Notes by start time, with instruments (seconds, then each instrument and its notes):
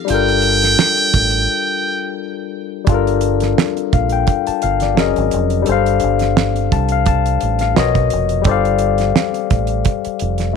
0.05 tine electric piano G3 D4, closed hi-hat
0.09 fingered electric bass G1, tine electric piano F4 A4, muted trumpet G5
0.14 tine electric piano A#4
0.28 closed hi-hat
0.42 closed hi-hat
0.62 snare, closed hi-hat
0.79 snare
0.97 closed hi-hat
1.14 fingered electric bass A1, kick, closed hi-hat
1.30 closed hi-hat
2.85 fingered electric bass G1, tine electric piano G3 D4, kick, closed hi-hat
2.89 tine electric piano F4 A4
2.94 tine electric piano A#4
3.07 closed hi-hat
3.21 closed hi-hat
3.40 snare, closed hi-hat
3.58 snare
3.77 closed hi-hat
3.93 fingered electric bass A#1, tine electric piano F5, kick, closed hi-hat
4.09 tine electric piano G5, closed hi-hat
4.27 kick, closed hi-hat
4.47 tine electric piano A5, muted fingered electric bass stroke, closed hi-hat
4.62 fingered electric bass G1, tine electric piano F5, closed hi-hat
4.80 tine electric piano D5, snare, closed hi-hat
4.95 fingered electric bass F#1, tine electric piano F#3 C#4 G#4 A#4, snare
5.00 tine electric piano D#5
5.16 fingered electric bass G#1, closed hi-hat
5.31 fingered electric bass F1, closed hi-hat
5.50 closed hi-hat
5.62 tine electric piano G3 D4, closed hi-hat
5.67 fingered electric bass G1, tine electric piano A4 C5
5.72 tine electric piano F5
5.86 closed hi-hat
6.00 fingered electric bass G1, closed hi-hat
6.19 snare, closed hi-hat
6.37 snare
6.56 closed hi-hat
6.72 fingered electric bass C2, tine electric piano A5, kick, closed hi-hat
6.89 tine electric piano F5, closed hi-hat
7.06 tine electric piano A5, kick, closed hi-hat
7.26 closed hi-hat
7.41 fingered electric bass A1, closed hi-hat
7.59 tine electric piano F5, snare, closed hi-hat
7.74 fingered electric bass B1, tine electric piano B2 B3 A#4 C#5 D#5, snare
7.79 tine electric piano D#5
7.95 kick, closed hi-hat
8.10 fingered electric bass F1, closed hi-hat
8.29 closed hi-hat
8.42 tine electric piano G3 G4 A4, kick, closed hi-hat
8.46 fingered electric bass G1, tine electric piano C5 D5
8.51 tine electric piano F5
8.65 closed hi-hat
8.79 closed hi-hat
8.98 snare, closed hi-hat
9.16 snare
9.34 closed hi-hat
9.50 fingered electric bass A1, kick, closed hi-hat
9.67 closed hi-hat
9.85 kick, closed hi-hat
10.05 muted fingered electric bass stroke, closed hi-hat
10.19 fingered electric bass F1, closed hi-hat
10.38 snare, closed hi-hat
10.53 tine electric piano A3